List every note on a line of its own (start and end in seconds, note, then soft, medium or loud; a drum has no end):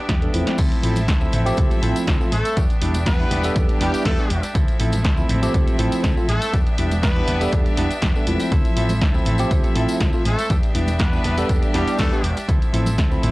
0.00 0.57 D4 medium
0.00 0.56 G4 medium
0.00 0.54 E5 medium
0.09 0.26 E2 medium
0.09 0.47 B3 medium
0.09 0.47 D4 medium
0.09 0.45 G4 loud
0.09 kick loud
0.09 snare loud
0.09 closed hi-hat medium
0.22 0.31 G3 medium
0.22 0.31 B3 medium
0.22 0.31 D4 medium
0.22 0.31 A4 medium
0.22 closed hi-hat soft
0.33 0.43 E1 medium
0.33 0.80 F3 medium
0.33 0.80 A3 medium
0.33 0.81 C4 medium
0.33 0.81 E4 loud
0.33 open hi-hat medium
0.46 0.59 D4 medium
0.46 0.58 G4 medium
0.46 snare medium
0.46 closed hi-hat medium
0.58 0.67 D2 loud
0.58 0.82 F3 loud
0.58 2.55 C4 medium
0.58 0.82 C4 medium
0.58 0.83 E4 loud
0.58 0.84 A4 loud
0.58 2.55 E5 medium
0.58 kick loud
0.58 closed hi-hat medium
0.58 crash medium
0.58 tambourine medium
0.72 closed hi-hat soft
0.72 tambourine soft
0.83 1.08 A1 loud
0.83 0.98 F3 medium
0.83 1.07 F3 medium
0.83 0.98 A3 medium
0.83 0.98 C4 medium
0.83 1.07 C4 medium
0.83 0.98 E4 medium
0.83 1.08 E4 medium
0.83 1.08 A4 medium
0.83 open hi-hat loud
0.96 closed hi-hat medium
0.96 tambourine medium
0.96 high conga medium
1.08 1.25 D2 medium
1.08 1.31 F3 medium
1.08 1.32 C4 medium
1.08 1.32 E4 loud
1.08 1.33 A4 loud
1.08 kick loud
1.08 snare loud
1.08 closed hi-hat medium
1.08 tambourine medium
1.21 1.43 F3 medium
1.21 1.43 A3 medium
1.21 1.43 C4 medium
1.21 1.43 E4 medium
1.21 tambourine soft
1.32 1.50 A1 medium
1.32 1.46 F3 medium
1.32 1.46 C4 medium
1.32 1.45 E4 medium
1.32 1.45 A4 medium
1.32 open hi-hat medium
1.32 low conga medium
1.45 1.79 F3 loud
1.45 1.79 A3 medium
1.45 1.80 C4 medium
1.45 1.57 C4 medium
1.45 1.57 E4 medium
1.45 1.80 G4 loud
1.45 1.58 A4 medium
1.45 closed hi-hat medium
1.45 tambourine medium
1.57 1.67 D2 loud
1.57 1.70 F3 medium
1.57 1.71 C4 medium
1.57 1.70 E4 medium
1.57 1.69 A4 medium
1.57 kick loud
1.57 closed hi-hat medium
1.57 tambourine medium
1.70 1.81 C4 soft
1.70 1.82 E4 medium
1.70 1.82 A4 medium
1.70 closed hi-hat soft
1.70 tambourine soft
1.70 high conga medium
1.82 1.91 A1 loud
1.82 2.17 F3 medium
1.82 2.06 F3 medium
1.82 2.17 A3 medium
1.82 2.17 C4 medium
1.82 2.06 C4 medium
1.82 2.17 E4 loud
1.82 2.07 E4 medium
1.82 2.07 A4 medium
1.82 open hi-hat loud
1.96 closed hi-hat medium
1.96 tambourine medium
2.07 2.16 D2 loud
2.07 2.45 F3 medium
2.07 2.45 C4 loud
2.07 2.44 E4 loud
2.07 2.44 A4 loud
2.07 kick loud
2.07 snare loud
2.07 closed hi-hat medium
2.07 tambourine medium
2.20 2.29 F3 medium
2.20 2.29 A3 medium
2.20 2.29 C4 medium
2.20 2.29 F4 loud
2.20 tambourine soft
2.32 2.41 A1 medium
2.32 2.62 A3 medium
2.32 2.62 A4 loud
2.32 open hi-hat medium
2.32 high conga medium
2.45 2.56 C4 soft
2.45 2.56 E4 medium
2.45 2.57 A4 medium
2.45 closed hi-hat medium
2.45 tambourine medium
2.56 2.66 E2 medium
2.56 2.79 B3 medium
2.56 4.53 D4 medium
2.56 2.80 D4 loud
2.56 4.53 G4 medium
2.56 2.81 G4 loud
2.56 13.31 E5 medium
2.56 kick loud
2.56 closed hi-hat medium
2.56 tambourine medium
2.70 closed hi-hat soft
2.70 tambourine soft
2.81 3.08 E1 loud
2.81 2.96 G3 medium
2.81 3.04 B3 medium
2.81 2.96 B3 medium
2.81 3.05 D4 medium
2.81 2.97 D4 medium
2.81 2.97 E4 medium
2.81 3.06 G4 medium
2.81 open hi-hat loud
2.94 closed hi-hat medium
2.94 tambourine medium
2.94 high conga medium
3.05 3.24 E2 medium
3.05 3.29 B3 medium
3.05 3.56 B3 medium
3.05 3.30 D4 medium
3.05 3.56 B4 loud
3.05 kick loud
3.05 snare loud
3.05 closed hi-hat medium
3.05 tambourine medium
3.19 3.41 G3 medium
3.19 3.41 B3 medium
3.19 3.41 D4 medium
3.19 3.41 E4 medium
3.19 tambourine soft
3.30 3.48 E1 medium
3.30 3.44 B3 medium
3.30 3.44 D4 medium
3.30 3.42 G4 medium
3.30 open hi-hat loud
3.30 low conga loud
3.43 3.78 G3 loud
3.43 3.78 B3 medium
3.43 3.78 D4 medium
3.43 3.54 D4 medium
3.43 3.55 G4 medium
3.43 3.78 A4 loud
3.43 closed hi-hat medium
3.43 tambourine medium
3.55 3.65 E2 loud
3.55 3.69 B3 medium
3.55 3.69 D4 medium
3.55 3.67 G4 medium
3.55 kick loud
3.55 closed hi-hat medium
3.55 tambourine medium
3.68 3.79 D4 medium
3.68 3.80 G4 medium
3.68 closed hi-hat soft
3.68 tambourine soft
3.68 high conga medium
3.80 3.90 E1 loud
3.80 4.03 G3 medium
3.80 4.16 G3 medium
3.80 4.03 B3 medium
3.80 4.16 B3 medium
3.80 4.04 D4 medium
3.80 4.16 D4 medium
3.80 4.16 E4 loud
3.80 4.03 G4 medium
3.80 4.04 G4 medium
3.80 snare medium
3.80 open hi-hat loud
3.94 muted fingered electric bass stroke soft
3.94 closed hi-hat medium
3.94 tambourine medium
4.04 4.14 E2 medium
4.04 4.43 A3 medium
4.04 4.43 B3 medium
4.04 4.43 D4 medium
4.04 4.41 G4 loud
4.04 4.43 A4 loud
4.04 kick loud
4.04 snare loud
4.04 closed hi-hat medium
4.18 4.27 G3 medium
4.18 4.27 B3 medium
4.18 4.27 D4 medium
4.18 4.27 G4 loud
4.18 tambourine soft
4.30 4.39 E1 medium
4.30 open hi-hat medium
4.30 high conga loud
4.42 4.55 D4 soft
4.42 4.55 G4 medium
4.42 closed hi-hat medium
4.42 tambourine medium
4.54 4.64 D2 loud
4.54 4.78 F3 loud
4.54 6.51 C4 medium
4.54 4.79 C4 medium
4.54 4.79 E4 loud
4.54 4.80 A4 loud
4.54 kick loud
4.54 closed hi-hat medium
4.54 tambourine medium
4.68 closed hi-hat soft
4.68 tambourine soft
4.79 5.05 A1 loud
4.79 5.03 F3 medium
4.79 4.95 F3 medium
4.79 4.95 A3 medium
4.79 5.03 C4 medium
4.79 4.95 C4 medium
4.79 4.95 E4 medium
4.79 5.04 E4 medium
4.79 5.04 A4 medium
4.79 open hi-hat loud
4.92 closed hi-hat medium
4.92 tambourine medium
4.92 high conga loud
5.04 5.22 D2 medium
5.04 5.28 F3 medium
5.04 5.29 C4 medium
5.04 5.29 E4 loud
5.04 5.30 A4 loud
5.04 kick loud
5.04 snare loud
5.04 closed hi-hat medium
5.04 tambourine medium
5.17 5.39 F3 medium
5.17 5.40 A3 medium
5.17 5.40 C4 medium
5.17 5.40 E4 medium
5.17 tambourine soft
5.29 5.47 A1 medium
5.29 5.42 F3 medium
5.29 5.43 C4 medium
5.29 5.42 E4 medium
5.29 5.41 A4 medium
5.29 open hi-hat loud
5.29 low conga medium
5.42 5.76 F3 loud
5.42 5.76 A3 medium
5.42 5.76 C4 medium
5.42 5.53 C4 soft
5.42 5.53 E4 medium
5.42 5.76 G4 loud
5.42 5.54 A4 medium
5.42 closed hi-hat medium
5.42 tambourine medium
5.53 5.63 D2 loud
5.53 5.67 F3 medium
5.53 5.67 C4 medium
5.53 5.66 E4 medium
5.53 5.65 A4 medium
5.53 kick loud
5.53 closed hi-hat medium
5.53 tambourine medium
5.66 5.78 C4 medium
5.66 5.78 E4 medium
5.66 5.79 A4 medium
5.66 closed hi-hat soft
5.66 tambourine soft
5.66 high conga medium
5.78 5.88 A1 loud
5.78 6.02 F3 medium
5.78 6.14 F3 medium
5.78 6.14 A3 medium
5.78 6.02 C4 medium
5.78 6.14 C4 medium
5.78 6.14 E4 medium
5.78 6.02 E4 medium
5.78 6.03 A4 medium
5.78 open hi-hat loud
5.92 closed hi-hat medium
5.92 tambourine medium
6.03 6.13 D2 medium
6.03 6.41 F3 medium
6.03 6.42 C4 medium
6.03 6.41 E4 medium
6.03 6.40 A4 loud
6.03 kick loud
6.03 snare loud
6.03 closed hi-hat medium
6.03 tambourine medium
6.16 6.25 F3 medium
6.16 6.25 A3 medium
6.16 6.25 C4 medium
6.16 6.26 F4 loud
6.16 tambourine soft
6.28 6.37 A1 medium
6.28 6.59 A3 medium
6.28 6.59 A4 loud
6.28 open hi-hat loud
6.28 high conga loud
6.41 6.52 C4 soft
6.41 6.53 E4 medium
6.41 6.53 A4 medium
6.41 closed hi-hat medium
6.41 tambourine medium
6.52 6.62 E2 loud
6.52 6.76 B3 loud
6.52 6.77 D4 loud
6.52 8.50 D4 medium
6.52 8.50 G4 medium
6.52 6.78 G4 loud
6.52 kick loud
6.52 closed hi-hat medium
6.52 tambourine medium
6.67 closed hi-hat soft
6.67 tambourine soft
6.77 7.05 E1 loud
6.77 6.93 G3 medium
6.77 7.01 B3 medium
6.77 6.93 B3 medium
6.77 6.93 D4 medium
6.77 7.01 D4 medium
6.77 6.93 E4 medium
6.77 7.02 G4 medium
6.77 open hi-hat loud
6.91 closed hi-hat medium
6.91 tambourine medium
6.91 high conga medium
7.02 7.20 E2 medium
7.02 7.26 B3 medium
7.02 7.53 B3 medium
7.02 7.27 D4 medium
7.02 7.28 G4 loud
7.02 7.53 B4 medium
7.02 kick loud
7.02 snare loud
7.02 closed hi-hat medium
7.02 tambourine medium
7.16 7.38 G3 medium
7.16 7.38 B3 medium
7.16 7.38 D4 medium
7.16 7.38 E4 medium
7.16 tambourine soft
7.27 7.45 E1 medium
7.27 7.41 B3 medium
7.27 7.41 D4 medium
7.27 7.39 G4 medium
7.27 open hi-hat loud
7.27 low conga medium
7.40 7.75 G3 medium
7.40 7.75 B3 medium
7.40 7.75 D4 medium
7.40 7.52 D4 medium
7.40 7.52 G4 medium
7.40 7.75 A4 loud
7.40 closed hi-hat medium
7.40 tambourine medium
7.52 7.62 E2 loud
7.52 7.65 B3 medium
7.52 7.66 D4 medium
7.52 7.64 G4 medium
7.52 kick loud
7.52 closed hi-hat medium
7.65 7.76 D4 medium
7.65 7.77 G4 medium
7.65 closed hi-hat soft
7.65 tambourine soft
7.65 high conga medium
7.76 7.86 E1 loud
7.76 7.87 G3 medium
7.76 8.00 B3 medium
7.76 7.87 B3 medium
7.76 8.01 D4 medium
7.76 7.87 D4 medium
7.76 7.87 E4 medium
7.76 8.02 G4 medium
7.76 snare medium
7.76 open hi-hat loud
7.90 muted fingered electric bass stroke soft
7.90 closed hi-hat medium
7.90 tambourine medium
8.02 8.11 E2 loud
8.02 8.40 B3 medium
8.02 8.40 D4 loud
8.02 8.38 G4 loud
8.02 kick loud
8.02 snare loud
8.02 closed hi-hat medium
8.02 tambourine medium
8.15 8.24 G3 medium
8.15 8.24 B3 medium
8.15 8.24 D4 medium
8.15 8.24 A4 medium
8.15 tambourine soft
8.27 8.36 E1 medium
8.27 8.74 F3 loud
8.27 8.74 A3 medium
8.27 8.74 C4 medium
8.27 8.74 E4 loud
8.27 open hi-hat loud
8.27 high conga medium
8.40 8.52 D4 soft
8.40 8.52 G4 medium
8.40 closed hi-hat medium
8.40 tambourine medium
8.51 8.61 D2 loud
8.51 8.75 F3 loud
8.51 10.48 C4 medium
8.51 8.76 C4 loud
8.51 8.76 E4 loud
8.51 8.77 A4 loud
8.51 kick loud
8.51 closed hi-hat medium
8.51 tambourine medium
8.65 closed hi-hat soft
8.65 tambourine soft
8.76 9.01 A1 loud
8.76 8.91 F3 medium
8.76 9.00 F3 medium
8.76 8.91 A3 medium
8.76 8.91 C4 medium
8.76 9.01 C4 medium
8.76 8.92 E4 medium
8.76 9.01 E4 medium
8.76 9.02 A4 medium
8.76 open hi-hat loud
8.89 closed hi-hat medium
8.89 tambourine medium
8.89 high conga loud
9.01 9.19 D2 medium
9.01 9.24 F3 medium
9.01 9.25 C4 loud
9.01 9.26 E4 loud
9.01 9.26 A4 loud
9.01 kick loud
9.01 snare loud
9.01 closed hi-hat medium
9.01 tambourine medium
9.14 9.36 F3 medium
9.14 9.36 A3 medium
9.14 9.36 C4 medium
9.14 9.36 E4 medium
9.14 tambourine soft
9.25 9.43 A1 medium
9.25 9.39 F3 medium
9.25 9.39 C4 medium
9.25 9.39 E4 medium
9.25 9.38 A4 medium
9.25 open hi-hat loud
9.25 low conga medium
9.38 9.73 F3 loud
9.38 9.73 A3 medium
9.38 9.73 C4 medium
9.38 9.50 C4 medium
9.38 9.51 E4 medium
9.38 9.73 G4 loud
9.38 9.51 A4 medium
9.38 closed hi-hat medium
9.38 tambourine medium
9.51 9.60 D2 loud
9.51 9.64 F3 medium
9.51 9.64 C4 medium
9.51 9.63 E4 medium
9.51 9.62 A4 medium
9.51 kick loud
9.51 closed hi-hat medium
9.51 tambourine medium
9.63 9.74 C4 medium
9.63 9.75 E4 medium
9.63 9.75 A4 medium
9.63 closed hi-hat soft
9.63 tambourine soft
9.63 high conga medium
9.75 9.85 A1 loud
9.75 9.99 F3 medium
9.75 10.10 F3 medium
9.75 10.10 A3 medium
9.75 10.10 C4 medium
9.75 9.99 C4 medium
9.75 10.11 E4 loud
9.75 10.00 E4 medium
9.75 10.00 A4 medium
9.75 open hi-hat loud
9.88 closed hi-hat medium
9.88 tambourine medium
10.00 10.09 D2 medium
10.00 10.38 C4 loud
10.00 10.38 E4 loud
10.00 10.36 A4 loud
10.00 kick loud
10.00 snare loud
10.00 closed hi-hat medium
10.13 10.22 F3 medium
10.13 10.22 A3 medium
10.13 10.22 C4 medium
10.13 10.22 F4 loud
10.13 tambourine soft
10.25 10.34 A1 medium
10.25 10.55 A3 medium
10.25 10.55 A4 loud
10.25 open hi-hat loud
10.25 high conga medium
10.38 10.49 C4 medium
10.38 10.50 E4 medium
10.38 10.50 A4 medium
10.38 closed hi-hat medium
10.38 tambourine medium
10.50 10.59 E2 medium
10.50 10.74 B3 medium
10.50 12.47 D4 medium
10.50 10.75 D4 loud
10.50 12.47 G4 medium
10.50 10.75 G4 loud
10.50 kick loud
10.50 closed hi-hat medium
10.50 tambourine medium
10.63 closed hi-hat soft
10.63 tambourine soft
10.74 11.01 E1 loud
10.74 10.90 G3 medium
10.74 10.90 B3 medium
10.74 10.98 B3 medium
10.74 10.90 D4 medium
10.74 10.99 D4 medium
10.74 10.90 E4 medium
10.74 11.00 G4 medium
10.74 open hi-hat loud
10.88 closed hi-hat medium
10.88 tambourine medium
10.88 high conga medium
10.99 11.17 E2 medium
10.99 11.49 B3 medium
10.99 11.23 B3 medium
10.99 11.24 D4 loud
10.99 11.25 G4 loud
10.99 11.49 B4 medium
10.99 kick loud
10.99 snare loud
10.99 closed hi-hat medium
10.99 tambourine medium
11.13 11.34 G3 medium
11.13 11.35 B3 medium
11.13 11.35 D4 medium
11.13 11.35 E4 medium
11.13 tambourine soft
11.24 11.42 E1 medium
11.24 11.38 B3 medium
11.24 11.38 D4 medium
11.24 11.36 G4 medium
11.24 open hi-hat medium
11.24 low conga medium
11.37 11.71 G3 loud
11.37 11.71 B3 medium
11.37 11.72 D4 medium
11.37 11.49 D4 medium
11.37 11.49 G4 medium
11.37 11.72 A4 loud
11.37 closed hi-hat medium
11.37 tambourine medium
11.49 11.58 E2 loud
11.49 11.62 B3 medium
11.49 11.62 D4 medium
11.49 11.61 G4 medium
11.49 kick loud
11.49 closed hi-hat medium
11.49 tambourine medium
11.62 11.74 D4 medium
11.62 11.74 G4 medium
11.62 closed hi-hat soft
11.62 tambourine soft
11.62 high conga medium
11.74 11.83 E1 loud
11.74 12.09 G3 medium
11.74 11.97 G3 medium
11.74 11.97 B3 medium
11.74 12.09 B3 medium
11.74 12.09 D4 medium
11.74 11.98 D4 medium
11.74 12.09 E4 loud
11.74 11.97 G4 medium
11.74 11.99 G4 medium
11.74 snare medium
11.74 open hi-hat loud
11.87 muted fingered electric bass stroke soft
11.87 closed hi-hat medium
11.87 tambourine medium
11.98 12.08 E2 medium
11.98 12.37 A3 medium
11.98 12.37 B3 loud
11.98 12.37 D4 loud
11.98 12.35 G4 loud
11.98 12.37 A4 loud
11.98 kick loud
11.98 snare loud
11.98 closed hi-hat medium
11.98 tambourine medium
12.12 12.20 G3 medium
12.12 12.20 B3 medium
12.12 12.20 D4 medium
12.12 12.21 G4 loud
12.12 tambourine soft
12.24 12.33 E1 medium
12.24 open hi-hat medium
12.24 high conga medium
12.37 12.49 D4 medium
12.37 12.48 G4 medium
12.37 closed hi-hat medium
12.37 tambourine medium
12.48 12.57 D2 loud
12.48 12.72 F3 loud
12.48 13.31 C4 medium
12.48 12.72 C4 loud
12.48 12.73 E4 loud
12.48 12.74 A4 loud
12.48 kick loud
12.48 closed hi-hat medium
12.48 tambourine medium
12.62 closed hi-hat soft
12.62 tambourine soft
12.73 12.98 A1 loud
12.73 12.97 F3 medium
12.73 12.88 F3 medium
12.73 12.88 A3 medium
12.73 12.88 C4 medium
12.73 12.97 C4 medium
12.73 12.88 E4 medium
12.73 12.98 E4 medium
12.73 12.98 A4 medium
12.73 open hi-hat loud
12.86 closed hi-hat medium
12.86 tambourine medium
12.86 high conga loud
12.98 13.15 D2 medium
12.98 13.21 F3 medium
12.98 13.22 C4 medium
12.98 13.22 E4 loud
12.98 13.23 A4 loud
12.98 kick loud
12.98 snare loud
12.98 closed hi-hat medium
12.98 tambourine medium
13.11 13.31 F3 medium
13.11 13.31 A3 medium
13.11 13.31 C4 medium
13.11 13.31 E4 loud
13.11 tambourine soft
13.22 13.31 A1 medium
13.22 13.31 F3 medium
13.22 13.31 C4 medium
13.22 13.31 E4 medium
13.22 13.31 A4 medium
13.22 open hi-hat medium
13.22 low conga medium